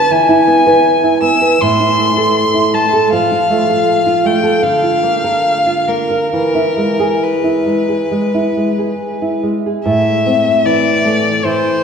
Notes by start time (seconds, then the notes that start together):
Already playing: B4 A5
0.10 E3 G#5
0.29 E4
0.47 B3
0.67 B4
1.04 E4
1.22 B3 E6
1.41 B4
1.61 A2 C6
1.80 E4
1.98 A3
2.17 A4
2.54 E4
2.74 A3 A5
2.93 A4
3.12 F3 F5
3.32 F4
3.50 A3
3.70 A4
4.07 F4
4.25 A3 G5
4.43 A4
4.63 D3 F5
4.83 F4
5.03 A#3
5.24 A#4
5.66 F4
5.88 A#3 A#4
6.10 A#4
6.33 E3 A#4
6.55 E4
6.77 G#3
7.00 G#4
7.23 B4
7.44 E4
7.66 G#3
7.89 G#4
8.11 G#3
8.34 E4
8.57 G#3
8.78 G#4
9.22 E4
9.43 G#3
9.66 G#4
9.85 A2 E5
10.26 C4
10.65 E3 D5
11.05 A3
11.45 E3 C5